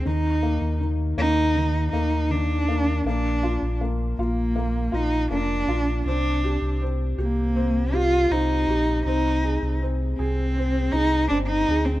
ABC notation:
X:1
M:4/4
L:1/16
Q:1/4=80
K:Eb
V:1 name="Cello"
E4 z2 E4 E2 D4 | D4 z2 B,4 E2 D4 | D4 z2 B,4 F2 E4 | E4 z2 C4 E2 D E2 C |]
V:2 name="Felt piano"
E,2 B,2 E,2 B,2 E,2 B,2 E,2 B,2 | B,2 F2 B,2 F2 B,2 F2 B,2 F2 | C2 G2 C2 G2 C2 G2 C2 G2 | C2 A2 C2 A2 C2 A2 C2 A2 |]
V:3 name="Sub bass" clef=bass
E,,3 E,,3 E,,4 E,,6 | B,,,3 B,,,3 B,,,4 B,,,2 F,,,2 B,,,2 | C,,3 C,,3 C,,6 C,,2 B,,,2 | C,,3 C,,3 C,,4 C,,2 G,,,2 D,,2 |]